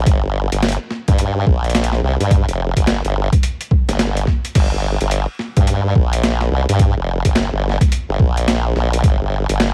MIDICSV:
0, 0, Header, 1, 3, 480
1, 0, Start_track
1, 0, Key_signature, -2, "minor"
1, 0, Tempo, 560748
1, 56, Time_signature, 4, 2, 24, 8
1, 8335, End_track
2, 0, Start_track
2, 0, Title_t, "Wobble bass"
2, 0, Program_c, 0, 39
2, 54, Note_on_c, 0, 31, 98
2, 421, Note_off_c, 0, 31, 0
2, 447, Note_on_c, 0, 31, 101
2, 663, Note_off_c, 0, 31, 0
2, 926, Note_on_c, 0, 43, 99
2, 1242, Note_off_c, 0, 43, 0
2, 1255, Note_on_c, 0, 34, 96
2, 1721, Note_off_c, 0, 34, 0
2, 1737, Note_on_c, 0, 36, 96
2, 1863, Note_off_c, 0, 36, 0
2, 1885, Note_on_c, 0, 43, 99
2, 2102, Note_off_c, 0, 43, 0
2, 2124, Note_on_c, 0, 29, 98
2, 2341, Note_off_c, 0, 29, 0
2, 2366, Note_on_c, 0, 31, 100
2, 2582, Note_off_c, 0, 31, 0
2, 2607, Note_on_c, 0, 31, 99
2, 2823, Note_off_c, 0, 31, 0
2, 3326, Note_on_c, 0, 31, 97
2, 3642, Note_off_c, 0, 31, 0
2, 3898, Note_on_c, 0, 31, 97
2, 4263, Note_off_c, 0, 31, 0
2, 4288, Note_on_c, 0, 31, 99
2, 4503, Note_off_c, 0, 31, 0
2, 4767, Note_on_c, 0, 43, 97
2, 5082, Note_off_c, 0, 43, 0
2, 5097, Note_on_c, 0, 34, 94
2, 5563, Note_off_c, 0, 34, 0
2, 5577, Note_on_c, 0, 36, 96
2, 5702, Note_off_c, 0, 36, 0
2, 5726, Note_on_c, 0, 43, 100
2, 5942, Note_off_c, 0, 43, 0
2, 5966, Note_on_c, 0, 29, 102
2, 6182, Note_off_c, 0, 29, 0
2, 6205, Note_on_c, 0, 31, 101
2, 6422, Note_off_c, 0, 31, 0
2, 6446, Note_on_c, 0, 31, 98
2, 6662, Note_off_c, 0, 31, 0
2, 6925, Note_on_c, 0, 31, 97
2, 7001, Note_off_c, 0, 31, 0
2, 7016, Note_on_c, 0, 34, 96
2, 7482, Note_off_c, 0, 34, 0
2, 7495, Note_on_c, 0, 34, 94
2, 7722, Note_off_c, 0, 34, 0
2, 7735, Note_on_c, 0, 31, 101
2, 8101, Note_off_c, 0, 31, 0
2, 8125, Note_on_c, 0, 31, 99
2, 8335, Note_off_c, 0, 31, 0
2, 8335, End_track
3, 0, Start_track
3, 0, Title_t, "Drums"
3, 55, Note_on_c, 9, 36, 115
3, 55, Note_on_c, 9, 42, 66
3, 140, Note_off_c, 9, 36, 0
3, 141, Note_off_c, 9, 42, 0
3, 446, Note_on_c, 9, 42, 50
3, 532, Note_off_c, 9, 42, 0
3, 535, Note_on_c, 9, 38, 116
3, 535, Note_on_c, 9, 42, 61
3, 586, Note_off_c, 9, 42, 0
3, 586, Note_on_c, 9, 42, 50
3, 615, Note_off_c, 9, 42, 0
3, 615, Note_on_c, 9, 42, 40
3, 621, Note_off_c, 9, 38, 0
3, 700, Note_off_c, 9, 42, 0
3, 775, Note_on_c, 9, 40, 40
3, 860, Note_off_c, 9, 40, 0
3, 923, Note_on_c, 9, 42, 52
3, 925, Note_on_c, 9, 36, 99
3, 1009, Note_off_c, 9, 42, 0
3, 1011, Note_off_c, 9, 36, 0
3, 1014, Note_on_c, 9, 42, 65
3, 1099, Note_off_c, 9, 42, 0
3, 1255, Note_on_c, 9, 36, 102
3, 1341, Note_off_c, 9, 36, 0
3, 1406, Note_on_c, 9, 42, 23
3, 1452, Note_off_c, 9, 42, 0
3, 1452, Note_on_c, 9, 42, 30
3, 1496, Note_off_c, 9, 42, 0
3, 1496, Note_on_c, 9, 38, 109
3, 1496, Note_on_c, 9, 42, 64
3, 1573, Note_off_c, 9, 42, 0
3, 1573, Note_on_c, 9, 42, 42
3, 1581, Note_off_c, 9, 38, 0
3, 1648, Note_on_c, 9, 40, 42
3, 1658, Note_off_c, 9, 42, 0
3, 1734, Note_off_c, 9, 40, 0
3, 1888, Note_on_c, 9, 42, 52
3, 1973, Note_off_c, 9, 42, 0
3, 1976, Note_on_c, 9, 36, 114
3, 1978, Note_on_c, 9, 42, 70
3, 2062, Note_off_c, 9, 36, 0
3, 2063, Note_off_c, 9, 42, 0
3, 2128, Note_on_c, 9, 42, 38
3, 2213, Note_off_c, 9, 42, 0
3, 2366, Note_on_c, 9, 36, 59
3, 2368, Note_on_c, 9, 42, 51
3, 2451, Note_off_c, 9, 36, 0
3, 2454, Note_off_c, 9, 42, 0
3, 2458, Note_on_c, 9, 38, 112
3, 2458, Note_on_c, 9, 42, 67
3, 2544, Note_off_c, 9, 38, 0
3, 2544, Note_off_c, 9, 42, 0
3, 2607, Note_on_c, 9, 42, 37
3, 2693, Note_off_c, 9, 42, 0
3, 2846, Note_on_c, 9, 36, 101
3, 2848, Note_on_c, 9, 42, 56
3, 2931, Note_off_c, 9, 36, 0
3, 2933, Note_off_c, 9, 42, 0
3, 2937, Note_on_c, 9, 42, 68
3, 3023, Note_off_c, 9, 42, 0
3, 3087, Note_on_c, 9, 42, 40
3, 3173, Note_off_c, 9, 42, 0
3, 3177, Note_on_c, 9, 36, 101
3, 3262, Note_off_c, 9, 36, 0
3, 3327, Note_on_c, 9, 38, 36
3, 3327, Note_on_c, 9, 42, 54
3, 3413, Note_off_c, 9, 38, 0
3, 3413, Note_off_c, 9, 42, 0
3, 3417, Note_on_c, 9, 38, 111
3, 3417, Note_on_c, 9, 42, 67
3, 3503, Note_off_c, 9, 38, 0
3, 3503, Note_off_c, 9, 42, 0
3, 3566, Note_on_c, 9, 42, 39
3, 3652, Note_off_c, 9, 42, 0
3, 3656, Note_on_c, 9, 40, 38
3, 3657, Note_on_c, 9, 36, 58
3, 3742, Note_off_c, 9, 40, 0
3, 3743, Note_off_c, 9, 36, 0
3, 3806, Note_on_c, 9, 42, 53
3, 3892, Note_off_c, 9, 42, 0
3, 3896, Note_on_c, 9, 42, 69
3, 3896, Note_on_c, 9, 49, 78
3, 3897, Note_on_c, 9, 36, 121
3, 3982, Note_off_c, 9, 42, 0
3, 3982, Note_off_c, 9, 49, 0
3, 3983, Note_off_c, 9, 36, 0
3, 4285, Note_on_c, 9, 42, 56
3, 4371, Note_off_c, 9, 42, 0
3, 4375, Note_on_c, 9, 42, 70
3, 4461, Note_off_c, 9, 42, 0
3, 4615, Note_on_c, 9, 40, 40
3, 4701, Note_off_c, 9, 40, 0
3, 4765, Note_on_c, 9, 42, 57
3, 4766, Note_on_c, 9, 36, 108
3, 4850, Note_off_c, 9, 42, 0
3, 4852, Note_off_c, 9, 36, 0
3, 4855, Note_on_c, 9, 42, 70
3, 4941, Note_off_c, 9, 42, 0
3, 5097, Note_on_c, 9, 36, 104
3, 5182, Note_off_c, 9, 36, 0
3, 5246, Note_on_c, 9, 42, 56
3, 5332, Note_off_c, 9, 42, 0
3, 5337, Note_on_c, 9, 38, 116
3, 5337, Note_on_c, 9, 42, 69
3, 5422, Note_off_c, 9, 38, 0
3, 5422, Note_off_c, 9, 42, 0
3, 5486, Note_on_c, 9, 40, 43
3, 5572, Note_off_c, 9, 40, 0
3, 5726, Note_on_c, 9, 42, 57
3, 5812, Note_off_c, 9, 42, 0
3, 5815, Note_on_c, 9, 42, 69
3, 5816, Note_on_c, 9, 36, 127
3, 5901, Note_off_c, 9, 36, 0
3, 5901, Note_off_c, 9, 42, 0
3, 6205, Note_on_c, 9, 36, 66
3, 6205, Note_on_c, 9, 42, 56
3, 6291, Note_off_c, 9, 36, 0
3, 6291, Note_off_c, 9, 42, 0
3, 6297, Note_on_c, 9, 38, 124
3, 6297, Note_on_c, 9, 42, 69
3, 6382, Note_off_c, 9, 38, 0
3, 6382, Note_off_c, 9, 42, 0
3, 6585, Note_on_c, 9, 40, 30
3, 6616, Note_off_c, 9, 40, 0
3, 6616, Note_on_c, 9, 40, 25
3, 6685, Note_on_c, 9, 36, 112
3, 6687, Note_off_c, 9, 40, 0
3, 6687, Note_on_c, 9, 40, 21
3, 6687, Note_on_c, 9, 42, 57
3, 6697, Note_off_c, 9, 40, 0
3, 6697, Note_on_c, 9, 40, 17
3, 6746, Note_off_c, 9, 40, 0
3, 6746, Note_on_c, 9, 40, 14
3, 6771, Note_off_c, 9, 36, 0
3, 6772, Note_off_c, 9, 42, 0
3, 6778, Note_on_c, 9, 42, 71
3, 6832, Note_off_c, 9, 40, 0
3, 6864, Note_off_c, 9, 42, 0
3, 7015, Note_on_c, 9, 36, 110
3, 7100, Note_off_c, 9, 36, 0
3, 7167, Note_on_c, 9, 42, 57
3, 7253, Note_off_c, 9, 42, 0
3, 7257, Note_on_c, 9, 38, 126
3, 7257, Note_on_c, 9, 42, 70
3, 7343, Note_off_c, 9, 38, 0
3, 7343, Note_off_c, 9, 42, 0
3, 7497, Note_on_c, 9, 40, 36
3, 7583, Note_off_c, 9, 40, 0
3, 7647, Note_on_c, 9, 42, 56
3, 7733, Note_off_c, 9, 42, 0
3, 7735, Note_on_c, 9, 36, 122
3, 7737, Note_on_c, 9, 42, 69
3, 7820, Note_off_c, 9, 36, 0
3, 7822, Note_off_c, 9, 42, 0
3, 8127, Note_on_c, 9, 42, 54
3, 8212, Note_off_c, 9, 42, 0
3, 8217, Note_on_c, 9, 38, 126
3, 8217, Note_on_c, 9, 42, 67
3, 8303, Note_off_c, 9, 38, 0
3, 8303, Note_off_c, 9, 42, 0
3, 8335, End_track
0, 0, End_of_file